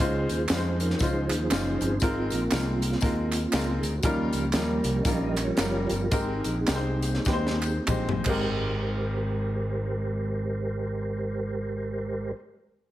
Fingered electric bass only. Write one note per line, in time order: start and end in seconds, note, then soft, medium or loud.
0.00 0.26 C#2 loud
0.30 0.47 D#2 medium
0.50 0.93 F2 loud
1.01 1.26 C#2 loud
1.30 1.48 D#2 medium
1.51 1.76 F#1 medium
1.81 1.98 G1 loud
2.02 2.28 G#1 loud
2.32 2.49 A#1 medium
2.52 2.95 C2 loud
3.02 3.45 D#2 medium
3.53 3.78 C#2 loud
3.82 4.00 D2 medium
4.04 4.29 D#2 loud
4.33 4.51 C#2 medium
4.54 4.79 D#2 loud
4.84 5.02 C2 loud
5.05 5.50 A#1 loud
5.58 5.85 F#1 loud
5.90 6.08 G1 loud
6.12 6.40 G#1 loud
6.45 6.64 A#1 medium
6.68 7.18 C2 loud
7.26 7.78 D#2 loud
7.88 8.20 A#1 medium
8.26 12.31 G#1 loud